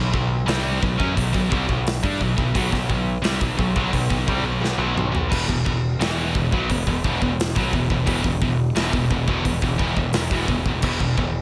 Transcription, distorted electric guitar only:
0.00 0.12 B2 medium
0.00 0.12 F#3 medium
0.13 0.41 B2 medium
0.13 0.41 F#3 medium
0.46 0.80 C3 medium
0.46 0.81 G3 loud
0.46 0.81 C4 loud
0.81 0.98 B2 medium
0.81 0.97 F#3 medium
0.98 1.14 F#3 medium
0.98 1.15 C#4 loud
1.15 1.32 B2 medium
1.15 1.32 F#3 medium
1.33 1.50 B2 medium
1.33 1.51 F#3 medium
1.50 1.67 C3 medium
1.50 1.67 G3 loud
1.68 1.96 B2 medium
1.68 1.96 F#3 medium
2.03 2.19 G3 medium
2.03 2.20 D4 medium
2.20 2.35 B2 medium
2.20 2.36 F#3 medium
2.37 2.53 B2 medium
2.37 2.54 F#3 medium
2.54 2.70 B2 medium
2.54 2.71 F#3 loud
2.71 2.88 B2 medium
2.71 2.88 F#3 medium
2.89 3.17 B2 medium
2.89 3.17 F#3 medium
3.22 3.39 C3 medium
3.22 3.40 G3 loud
3.40 3.56 B2 medium
3.40 3.57 F#3 medium
3.57 3.75 B2 medium
3.57 3.75 F#3 medium
3.76 3.92 B2 medium
3.76 3.92 F#3 loud
3.93 4.09 B2 medium
3.93 4.09 F#3 medium
4.10 4.27 B2 medium
4.10 4.28 F#3 medium
4.27 4.44 C3 medium
4.27 4.44 G3 loud
4.44 4.60 B2 medium
4.44 4.61 F#3 medium
4.61 4.76 B2 medium
4.61 4.77 F#3 medium
4.78 4.95 B2 medium
4.78 4.94 F#3 loud
4.95 5.10 B2 medium
4.95 5.11 F#3 medium
5.12 5.29 B2 medium
5.12 5.30 F#3 medium
5.29 5.46 E2 medium
5.29 5.47 B2 medium
5.48 5.64 E2 medium
5.48 5.64 B2 medium
5.65 5.93 E2 medium
5.65 5.93 B2 medium
6.00 6.33 E2 medium
6.00 6.34 B2 medium
6.00 6.34 E3 medium
6.35 6.52 E2 medium
6.35 6.51 B2 medium
6.52 6.68 B2 medium
6.52 6.69 F#3 loud
6.70 6.86 E2 medium
6.70 6.86 B2 medium
6.87 7.03 E2 medium
6.87 7.04 B2 medium
7.04 7.20 E2 medium
7.04 7.21 B2 loud
7.22 7.49 E2 medium
7.22 7.49 B2 medium
7.55 7.71 B2 medium
7.55 7.72 F#3 loud
7.73 7.89 E2 medium
7.73 7.89 B2 medium
7.90 8.05 E2 medium
7.90 8.06 B2 medium
8.06 8.22 E2 loud
8.06 8.23 B2 loud
8.23 8.41 E2 medium
8.23 8.41 B2 medium
8.42 8.69 E2 medium
8.42 8.69 B2 medium
8.75 8.92 E2 medium
8.75 8.92 B2 loud
8.94 9.09 E2 medium
8.94 9.09 B2 medium
9.10 9.26 E2 medium
9.10 9.27 B2 medium
9.27 9.44 E2 medium
9.27 9.44 B2 loud
9.45 9.61 E2 medium
9.45 9.61 B2 medium
9.62 9.77 E2 medium
9.62 9.77 B2 medium
9.78 9.95 E2 loud
9.78 9.95 B2 loud
9.98 10.14 E2 medium
9.98 10.14 B2 medium
10.15 10.31 E2 medium
10.15 10.31 B2 medium
10.32 10.48 E2 medium
10.32 10.48 B2 loud
10.50 10.66 E2 medium
10.50 10.66 B2 medium
10.67 10.81 E2 medium
10.67 10.82 B2 medium
10.82 10.99 E2 loud
10.82 10.99 B2 loud
11.00 11.16 E2 medium
11.00 11.16 B2 medium
11.17 11.42 E2 medium
11.17 11.42 B2 medium

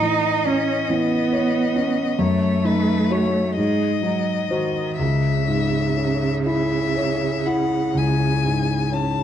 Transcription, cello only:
0.00 0.48 D#4 medium
0.46 0.91 C#4 medium
0.90 2.21 B3 medium
2.20 3.56 A3 medium
3.56 4.02 G#3 medium
4.03 4.50 F#3 soft
4.51 5.02 D#3 soft
5.00 9.23 C#3 soft

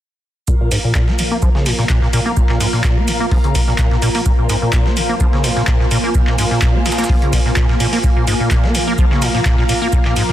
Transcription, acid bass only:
0.48 0.55 A#2 medium
0.60 0.70 A#2 medium
0.71 0.78 G#2 medium
0.84 0.93 A#2 medium
0.95 1.09 A#2 loud
1.08 1.20 A#3 medium
1.19 1.23 C#3 medium
1.31 1.37 A#3 loud
1.42 1.49 F3 medium
1.55 1.68 C#3 medium
1.66 1.73 A#2 medium
1.79 1.85 A#2 medium
1.90 2.00 A#2 loud
2.02 2.08 A#2 medium
2.13 2.20 A#2 medium
2.26 2.32 A#3 medium
2.37 2.44 A#2 medium
2.49 2.59 A#2 medium
2.60 2.67 G#2 medium
2.73 2.82 A#2 medium
2.84 2.98 A#2 loud
2.97 3.09 A#3 medium
3.08 3.12 C#3 medium
3.20 3.26 A#3 loud
3.31 3.38 F3 medium
3.44 3.57 C#3 medium
3.55 3.62 A#2 medium
3.68 3.74 A#2 medium
3.79 3.89 A#2 medium
3.91 3.97 A#2 medium
4.02 4.09 A#2 loud
4.15 4.21 A#3 medium
4.26 4.33 A#2 medium
4.38 4.48 A#2 medium
4.50 4.56 G#2 medium
4.62 4.71 A#2 medium
4.73 4.87 A#2 loud
4.86 4.98 A#3 medium
4.97 5.01 C#3 medium
5.09 5.15 A#3 medium
5.20 5.27 F3 medium
5.33 5.45 C#3 medium
5.44 5.51 A#2 medium
5.57 5.63 A#2 medium
5.68 5.78 A#2 loud
5.80 5.86 A#2 medium
5.91 5.98 A#2 loud
6.04 6.10 A#3 medium
6.15 6.22 A#2 medium
6.27 6.37 A#2 medium
6.38 6.45 G#2 medium
6.51 6.60 A#2 medium
6.62 6.76 A#2 loud
6.75 6.87 A#3 medium
6.86 6.90 C#3 medium
6.98 7.04 A#3 loud
7.09 7.16 F3 medium
7.22 7.34 C#3 medium
7.33 7.40 A#2 medium
7.45 7.52 A#2 medium
7.57 7.67 A#2 loud
7.69 7.75 A#2 medium
7.80 7.87 A#2 loud
7.93 7.99 A#3 medium
8.04 8.11 A#2 medium
8.16 8.26 A#2 medium
8.27 8.34 G#2 medium
8.40 8.49 A#2 medium
8.51 8.65 A#2 loud
8.64 8.76 A#3 medium
8.75 8.79 C#3 medium
8.87 8.93 A#3 loud
8.98 9.05 F3 medium
9.11 9.24 C#3 medium
9.22 9.29 A#2 medium
9.34 9.41 A#2 medium
9.46 9.56 A#2 loud
9.58 9.64 A#2 medium
9.69 9.73 A#2 medium
9.82 9.88 A#3 loud
9.93 10.00 A#2 medium
10.05 10.15 A#2 medium
10.16 10.23 G#2 medium
10.29 10.33 A#2 medium

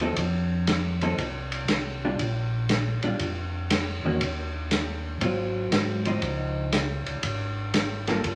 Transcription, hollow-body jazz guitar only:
0.01 0.16 F3 medium
0.01 0.16 C4 medium
0.01 0.17 D#4 medium
0.01 0.17 A4 medium
1.03 1.17 F3 medium
1.03 1.17 C4 medium
1.03 1.18 D#4 medium
1.03 1.17 A4 medium
2.05 2.19 G3 medium
2.05 2.19 D4 medium
2.05 2.19 F4 medium
3.04 3.19 G3 medium
3.04 3.19 D4 medium
3.04 3.19 F4 medium
4.05 4.20 D#3 medium
4.05 4.20 A#3 medium
4.05 4.20 C#4 medium
4.05 4.20 F#4 medium
5.22 5.99 F#3 medium
5.22 6.00 C4 medium
5.22 6.00 F4 medium
6.06 6.70 F3 medium
6.06 6.71 C4 medium
6.06 6.71 D#4 medium
8.08 8.23 G3 medium
8.08 8.24 A#3 medium
8.08 8.24 F4 medium
8.08 8.24 A4 medium

